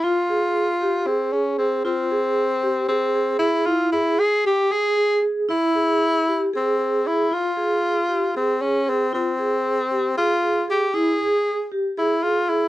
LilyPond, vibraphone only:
\new Staff \with { instrumentName = "Vibraphone" } { \time 7/8 \key f \minor \tempo 4 = 116 f'8 aes'4 g'8 aes'8 aes'8 aes'8 | f'8 aes'4 g'8 aes'8 aes'8 aes'8 | e'8 gis'4 g'8 gis'8 gis'8 gis'8 | e'8 gis'4 g'8 gis'8 gis'8 gis'8 |
f'8 aes'4 g'8 aes'8 aes'8 aes'8 | f'8 aes'4 g'8 aes'8 aes'8 aes'8 | e'8 gis'4 g'8 gis'8 gis'8 gis'8 | }